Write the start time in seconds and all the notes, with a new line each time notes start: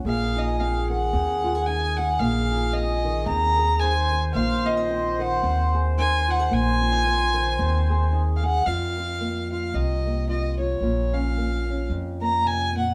0.05 A#1 A#2 G#4 F5
0.36 D#4 D#5
0.60 C4 F5
0.90 D#3 F#5
1.13 D#2 C4
1.44 F4
1.55 G#4
1.66 D#4 G#5
1.97 G#4 F#5
2.19 A#1 A#2 F5
2.51 D#4
2.73 C4 D#5
3.05 D#3
3.26 D#2 C4 A#5
3.59 G#4
3.79 D#4 C5 G#5
4.13 G#4
4.34 A#1 A#2 C5 F5
4.65 C4 D#5
4.77 D#4
4.89 C4
5.19 D#3 F#5
5.43 D#2 C4
5.75 G#4
5.98 D#4 G#5
6.27 F4 F#5
6.39 G#4
6.51 A#1 A#2 G#5
6.81 C4
6.92 D#4
7.05 C4
7.34 D#3
7.59 D#2 C4
7.90 G#4
8.13 D#4 G#4
8.36 F5
8.43 G#4 F#5
8.66 F2 F4 F5
8.98 F4
9.21 A#3
9.52 F4 F5
9.74 C2 C3 D#5
10.06 A#3
10.29 F4 D#5
10.59 F4 C#5
10.80 A#1 A#2 F4
11.13 C#4 F5
11.38 A#3
11.69 C#4
11.90 F2
12.21 A#3 A#5
12.44 C3 G#5
12.76 A#2 F#5